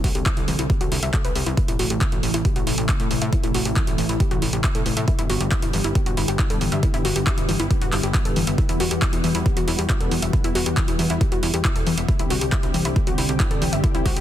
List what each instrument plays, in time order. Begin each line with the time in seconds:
Already playing: analog synth pad D3 G3 C4 A4
0.04 analog synth bass C2, synth arpeggio sound F#4, kick, open hi-hat
0.15 analog synth bass C2, synth arpeggio sound G4, closed hi-hat
0.26 synth arpeggio sound E4, kick, clap, closed hi-hat
0.37 analog synth bass C2, synth arpeggio sound E4, closed hi-hat
0.48 analog synth bass C2, synth arpeggio sound E3, open hi-hat
0.59 analog synth bass C2, synth arpeggio sound E4, closed hi-hat
0.70 synth arpeggio sound G4, kick, closed hi-hat
0.81 analog synth bass C2, synth arpeggio sound F#4, closed hi-hat
0.92 analog synth bass C2, synth arpeggio sound E4, open hi-hat
1.03 analog synth bass C2, synth arpeggio sound E5, closed hi-hat
1.14 synth arpeggio sound A4, kick, clap, closed hi-hat
1.25 analog synth bass C2, synth arpeggio sound B4, closed hi-hat
1.35 analog synth bass C2, synth arpeggio sound G4, open hi-hat
1.46 analog synth bass C2, synth arpeggio sound E4, closed hi-hat
1.57 analog synth pad C3 E3 A3 E4, synth arpeggio sound E4, kick, closed hi-hat
1.68 analog synth bass A1, synth arpeggio sound E4, closed hi-hat
1.79 analog synth bass A1, synth arpeggio sound F#4, open hi-hat
1.90 analog synth bass A1, synth arpeggio sound G4, closed hi-hat
2.01 synth arpeggio sound E4, kick, clap, closed hi-hat
2.12 analog synth bass A1, synth arpeggio sound E4, closed hi-hat
2.23 analog synth bass A1, synth arpeggio sound E3, open hi-hat
2.34 analog synth bass A1, synth arpeggio sound E4, closed hi-hat
2.45 synth arpeggio sound G4, kick, closed hi-hat
2.56 analog synth bass A1, synth arpeggio sound F#4, closed hi-hat
2.67 analog synth bass A1, synth arpeggio sound E4, open hi-hat
2.78 analog synth bass A1, synth arpeggio sound G4, closed hi-hat
2.89 synth arpeggio sound E4, kick, clap, closed hi-hat
3.00 analog synth bass A2, synth arpeggio sound A4, closed hi-hat
3.11 analog synth bass A1, synth arpeggio sound E3, open hi-hat
3.22 analog synth bass A2, synth arpeggio sound E5, closed hi-hat
3.33 synth arpeggio sound E4, kick, closed hi-hat
3.44 analog synth bass A1, synth arpeggio sound E4, closed hi-hat
3.54 analog synth bass A1, synth arpeggio sound F#4, open hi-hat
3.65 analog synth bass A1, synth arpeggio sound G4, closed hi-hat
3.76 synth arpeggio sound E4, kick, clap, closed hi-hat
3.87 analog synth bass A1, synth arpeggio sound E4, closed hi-hat
3.98 analog synth bass A1, synth arpeggio sound E3, open hi-hat
4.09 analog synth bass A1, synth arpeggio sound E4, closed hi-hat
4.20 synth arpeggio sound G4, kick, closed hi-hat
4.31 analog synth bass A1, synth arpeggio sound F#4, closed hi-hat
4.42 analog synth bass A1, synth arpeggio sound E4, open hi-hat
4.53 analog synth bass A1, synth arpeggio sound G4, closed hi-hat
4.64 synth arpeggio sound E4, kick, clap, closed hi-hat
4.75 analog synth bass A2, synth arpeggio sound A4, closed hi-hat
4.86 analog synth bass A1, synth arpeggio sound E3, open hi-hat
4.97 analog synth bass A2, synth arpeggio sound E5, closed hi-hat
5.08 analog synth pad D3 G3 B3 G4, synth arpeggio sound E4, kick, closed hi-hat
5.19 analog synth bass G1, synth arpeggio sound E4, closed hi-hat
5.30 analog synth bass G1, synth arpeggio sound F#4, open hi-hat
5.41 analog synth bass G1, synth arpeggio sound G4, closed hi-hat
5.51 synth arpeggio sound E4, kick, clap, closed hi-hat
5.62 analog synth bass G1, synth arpeggio sound E4, closed hi-hat
5.73 analog synth bass G1, synth arpeggio sound E3, open hi-hat
5.84 analog synth bass G1, synth arpeggio sound E4, closed hi-hat
5.95 synth arpeggio sound G4, kick, closed hi-hat
6.06 analog synth bass G1, synth arpeggio sound F#4, closed hi-hat
6.17 analog synth bass G1, synth arpeggio sound E4, open hi-hat
6.28 analog synth bass G1, synth arpeggio sound G4, closed hi-hat
6.39 synth arpeggio sound E4, kick, clap, closed hi-hat
6.50 analog synth bass G2, synth arpeggio sound A4, closed hi-hat
6.61 analog synth bass G1, synth arpeggio sound E3, open hi-hat
6.72 analog synth bass G2, synth arpeggio sound E5, closed hi-hat
6.83 synth arpeggio sound E4, kick, closed hi-hat
6.94 analog synth bass G1, synth arpeggio sound E4, closed hi-hat
7.05 analog synth bass G1, synth arpeggio sound F#4, open hi-hat
7.16 analog synth bass G1, synth arpeggio sound G4, closed hi-hat
7.27 synth arpeggio sound E4, kick, clap, closed hi-hat
7.38 analog synth bass G1, synth arpeggio sound E4, closed hi-hat
7.49 analog synth bass G1, synth arpeggio sound E3, open hi-hat
7.60 analog synth bass G1, synth arpeggio sound E4, closed hi-hat
7.71 synth arpeggio sound G4, kick, closed hi-hat
7.82 analog synth bass G1, synth arpeggio sound F#4, closed hi-hat
7.92 analog synth bass G1, synth arpeggio sound E4, clap, open hi-hat
8.03 analog synth bass G1, synth arpeggio sound G4, closed hi-hat
8.14 synth arpeggio sound E4, kick, clap, closed hi-hat
8.25 analog synth bass G1, synth arpeggio sound A4, closed hi-hat
8.36 analog synth bass G1, synth arpeggio sound E3, open hi-hat
8.47 analog synth bass G1, synth arpeggio sound E5, closed hi-hat
8.58 analog synth pad E3 F#4, synth arpeggio sound E4, kick, closed hi-hat
8.69 analog synth bass E2, synth arpeggio sound E4, closed hi-hat
8.80 analog synth bass E2, synth arpeggio sound F#4, open hi-hat
8.91 analog synth bass E2, synth arpeggio sound G4, closed hi-hat
9.02 synth arpeggio sound E4, kick, clap, closed hi-hat
9.13 analog synth bass E2, synth arpeggio sound E4, closed hi-hat
9.24 analog synth bass E2, synth arpeggio sound E3, open hi-hat
9.35 analog synth bass E2, synth arpeggio sound E4, closed hi-hat
9.46 synth arpeggio sound G4, kick, closed hi-hat
9.57 analog synth bass E2, synth arpeggio sound F#4, closed hi-hat
9.68 analog synth bass E2, synth arpeggio sound E4, open hi-hat
9.79 analog synth bass E2, synth arpeggio sound G4, closed hi-hat
9.90 synth arpeggio sound E4, kick, clap, closed hi-hat
10.00 analog synth bass E1, synth arpeggio sound A4, closed hi-hat
10.11 analog synth bass E2, synth arpeggio sound E3, open hi-hat
10.22 analog synth bass E1, synth arpeggio sound E5, closed hi-hat
10.33 synth arpeggio sound E4, kick, closed hi-hat
10.44 analog synth bass E2, synth arpeggio sound E4, closed hi-hat
10.55 analog synth bass E2, synth arpeggio sound F#4, open hi-hat
10.66 analog synth bass E2, synth arpeggio sound G4, closed hi-hat
10.77 synth arpeggio sound E4, kick, clap, closed hi-hat
10.88 analog synth bass E2, synth arpeggio sound E4, closed hi-hat
10.99 analog synth bass E2, synth arpeggio sound E3, open hi-hat
11.10 analog synth bass E2, synth arpeggio sound E4, closed hi-hat
11.21 synth arpeggio sound G4, kick, closed hi-hat
11.32 analog synth bass E2, synth arpeggio sound F#4, closed hi-hat
11.43 analog synth bass E2, synth arpeggio sound E4, open hi-hat
11.54 analog synth bass E2, synth arpeggio sound G4, closed hi-hat
11.65 synth arpeggio sound E4, kick, clap, closed hi-hat
11.76 analog synth bass E1, synth arpeggio sound A4, closed hi-hat
11.87 analog synth bass E2, synth arpeggio sound E3, open hi-hat
11.98 analog synth bass E1, synth arpeggio sound E5, closed hi-hat
12.08 analog synth pad D3 G3 C4 G4, synth arpeggio sound E4, kick, closed hi-hat
12.19 analog synth bass C2, synth arpeggio sound E4, closed hi-hat
12.30 analog synth bass C2, synth arpeggio sound F#4, open hi-hat
12.41 analog synth bass C2, synth arpeggio sound G4, closed hi-hat
12.52 synth arpeggio sound E4, kick, clap, closed hi-hat
12.63 analog synth bass C2, synth arpeggio sound E4, closed hi-hat
12.74 analog synth bass C2, synth arpeggio sound E3, open hi-hat
12.85 analog synth bass C2, synth arpeggio sound E4, closed hi-hat
12.96 synth arpeggio sound G4, kick, closed hi-hat
13.07 analog synth bass C2, synth arpeggio sound F#4, closed hi-hat
13.18 analog synth bass C2, synth arpeggio sound E4, open hi-hat
13.29 analog synth bass C2, synth arpeggio sound G4, closed hi-hat
13.40 synth arpeggio sound E4, kick, clap, closed hi-hat
13.51 analog synth bass G1, synth arpeggio sound A4, closed hi-hat
13.62 analog synth bass C2, synth arpeggio sound E3, open hi-hat
13.73 analog synth bass G1, synth arpeggio sound E5, closed hi-hat
13.84 synth arpeggio sound E4, kick, closed hi-hat
13.95 analog synth bass C2, synth arpeggio sound E4, closed hi-hat
14.06 analog synth bass C2, synth arpeggio sound F#4, kick, open hi-hat
14.17 analog synth bass C2, synth arpeggio sound G4, closed hi-hat